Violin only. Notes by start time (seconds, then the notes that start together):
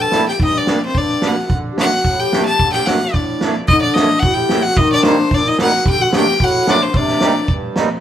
0.01 A5
0.29 G5
0.45 D#5
0.58 D5
0.86 C5
0.98 D5
1.27 F#5
1.81 F#5
2.20 G5
2.46 A5
2.73 G5
2.86 F#5
3.14 D5
3.68 D#5
3.82 D5
3.94 D#5
4.20 F#5
4.35 G5
4.62 F#5
4.73 F#5
4.78 D#5
4.93 D5
5.05 C5
5.34 D5
5.48 D#5
5.62 F#5
5.90 G5
6.02 F#5
6.17 G5
6.44 F#5
6.71 D5
6.83 C5
6.97 D5